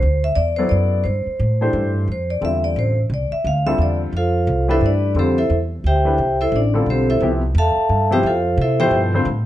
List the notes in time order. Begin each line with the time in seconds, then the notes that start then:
Already playing: C5
0.02 D2
0.24 E5
0.36 E2 D5
0.56 F#3 B3 E4 A4 C5 D5
0.69 F#2 D5
1.04 G2 C5
1.26 muted upright bass stroke
1.40 A2
1.61 E3 A3 D4 G4 C5
1.73 G2
2.08 F2
2.12 C5
2.30 D5
2.41 E2 D3 G3 C4 F4 A4 E5
2.64 D5
2.76 A1 C5
3.10 C2
3.14 D5
3.31 E5, muted upright bass stroke
3.44 D2 F5
3.66 D3 G3 C4 F4 A4 E5
3.78 E2 D5
4.13 F2
4.17 F4 A4 C5 F5
4.47 C2
4.68 E3 A3 D4 E4 G4 A4 B4 C5 E5
4.81 G2
4.86 D4 D5
5.15 F2 D3 G3 C4 F4 A4
5.19 C4 G4 A4 C5
5.38 E4 A4 C5 E5
5.50 E2
5.84 D2 G4 C5 E5 G5
6.05 E3 A3 D4 G4 B4
6.18 C2
6.41 E4 A4 C5 E5
6.52 A1 D5
6.56 D4
6.74 D3 G3 C4 F4 A4
6.86 B1
6.90 C4 G4 A4 C5
7.10 E4 A4 C5 E5
7.20 C2 C3 F3 B3 E4 G4
7.55 E2 A4 E5 F5 A5
7.76 muted upright bass stroke
7.89 G2
8.11 C3 F3 B3 E4 G4 C5 E5 G5
8.23 F2 F4 C5 F5
8.27 A4
8.58 C3
8.62 E4 A4 C5 E5
8.80 B2 F3 E4 G4 A4 C5 E5 G5
8.91 G2
9.14 D3 G3 C4 F4 C5
9.25 A2